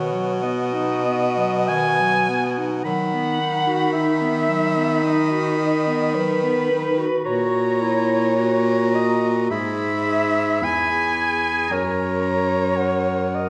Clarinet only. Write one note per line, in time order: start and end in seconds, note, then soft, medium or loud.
0.00 0.14 D#3 medium
0.12 0.42 F#3 medium
0.42 0.74 B3 medium
0.73 1.06 D#4 medium
1.05 1.38 B3 medium
1.37 1.70 F#3 medium
1.69 2.01 D#3 medium
2.00 2.31 F#3 medium
2.29 2.59 B3 medium
2.58 2.84 D#4 medium
2.85 3.15 F#3 medium
3.13 3.41 B3 medium
3.40 3.69 D#4 medium
3.67 3.96 F#4 medium
3.94 4.23 D#4 medium
4.21 4.50 B3 medium
4.48 4.77 F#3 medium
4.76 5.03 B3 medium
5.03 5.32 D#4 medium
5.31 5.60 F#4 medium
5.58 5.88 D#4 medium
5.87 6.16 B3 medium
6.14 6.44 F#3 medium
6.43 6.72 B3 medium
6.71 6.99 D#4 medium
6.98 7.24 F#4 medium
7.25 7.82 F#4 medium
7.81 8.39 E4 medium
8.37 9.53 F#4 medium
9.52 9.91 G#4 medium
10.07 11.73 G#4 medium
11.72 12.79 A#4 medium
12.80 13.49 A#4 medium